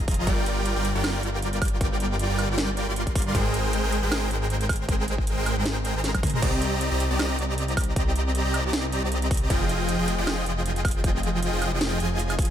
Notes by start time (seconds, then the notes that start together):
Already playing: F1 F3 F4 G#4 D#5 A#5
0.08 kick, closed hi-hat, open hi-hat
0.14 closed hi-hat
0.27 G1 G3 F4 A#4 D5 G5, kick, closed hi-hat
0.46 closed hi-hat
0.66 closed hi-hat
0.76 G1 G3 F4 A#4 D5 G5
0.85 closed hi-hat
0.95 G1 G3 F4 A#4 D5 G5
1.04 snare, closed hi-hat, high woodblock
1.23 G1 G3 F4 A#4 D5 G5, closed hi-hat
1.42 closed hi-hat
1.53 closed hi-hat
1.62 kick, closed hi-hat, open hi-hat, high woodblock
1.68 closed hi-hat
1.81 kick, closed hi-hat
2.00 closed hi-hat
2.19 closed hi-hat
2.30 G1 G3 F4 A#4 D5 G5
2.39 closed hi-hat, high woodblock
2.49 G1 G3 F4 A#4 D5 G5
2.58 snare, closed hi-hat
2.77 closed hi-hat
2.88 G1 G3 F4 A#4 D5 C6
2.96 closed hi-hat
3.07 kick, closed hi-hat
3.15 kick, closed hi-hat, open hi-hat
3.22 closed hi-hat
3.35 G#1 G#3 G#4 A#4 C5 G5, kick, closed hi-hat
3.54 closed hi-hat
3.73 closed hi-hat
3.84 G#1 G#3 G#4 A#4 C5 G5
3.92 closed hi-hat
4.03 G#1 G#3 G#4 A#4 C5 G5
4.12 snare, closed hi-hat, high woodblock
4.31 G#1 G#3 G#4 A#4 C5 G5, closed hi-hat
4.50 closed hi-hat
4.61 closed hi-hat
4.69 kick, closed hi-hat, open hi-hat, high woodblock
4.76 closed hi-hat
4.89 kick, closed hi-hat
5.08 closed hi-hat
5.18 kick
5.27 closed hi-hat
5.38 G#1 G#3 G#4 A#4 C5 G5
5.46 closed hi-hat, high woodblock
5.57 G#1 G#3 G#4 A#4 C5 G5
5.66 snare, closed hi-hat
5.85 closed hi-hat
5.95 G#1 G#3 G#4 A#4 C5 A#5
6.04 snare, closed hi-hat
6.15 kick, closed hi-hat, high tom, high woodblock
6.23 kick, closed hi-hat, open hi-hat, mid tom
6.30 closed hi-hat
6.34 mid tom
6.42 C2 C4 G4 D5 D#5 A#5, kick, closed hi-hat, crash
6.62 closed hi-hat
6.81 closed hi-hat
6.91 C2 C4 G4 D5 D#5 A#5
7.00 closed hi-hat
7.11 C2 C4 G4 D5 D#5 A#5
7.19 snare, closed hi-hat, high woodblock
7.38 C2 C4 G4 D5 D#5 A#5, closed hi-hat
7.58 closed hi-hat
7.68 closed hi-hat
7.77 kick, closed hi-hat, open hi-hat, high woodblock
7.83 closed hi-hat
7.96 kick, closed hi-hat
8.16 closed hi-hat
8.35 closed hi-hat
8.45 C2 C4 G4 D5 D#5 A#5
8.54 closed hi-hat, high woodblock
8.64 C2 C4 G4 D5 D#5 A#5
8.73 snare, closed hi-hat
8.92 closed hi-hat
9.03 C2 C4 G4 D5 D#5 A#5
9.12 closed hi-hat
9.22 closed hi-hat
9.31 kick, closed hi-hat, open hi-hat
9.37 closed hi-hat
9.50 F1 F3 F4 G#4 D#5 G5, kick, closed hi-hat
9.69 closed hi-hat
9.89 closed hi-hat
9.99 F1 F3 F4 G#4 D#5 G5
10.08 closed hi-hat
10.18 F1 F3 F4 G#4 D#5 G5
10.27 snare, closed hi-hat, high woodblock
10.46 F1 F3 F4 G#4 D#5 G5, closed hi-hat
10.66 closed hi-hat
10.76 closed hi-hat
10.85 kick, closed hi-hat, open hi-hat, high woodblock
10.91 closed hi-hat
11.04 kick, closed hi-hat
11.23 closed hi-hat
11.43 closed hi-hat
11.53 F1 F3 F4 G#4 D#5 G5
11.62 closed hi-hat, high woodblock
11.72 F1 F3 F4 G#4 D#5 G5
11.81 snare, closed hi-hat
12.00 F1 F3 F4 G#4 D#5 G#5, closed hi-hat
12.19 closed hi-hat
12.30 closed hi-hat, high woodblock
12.39 kick, closed hi-hat, open hi-hat
12.45 closed hi-hat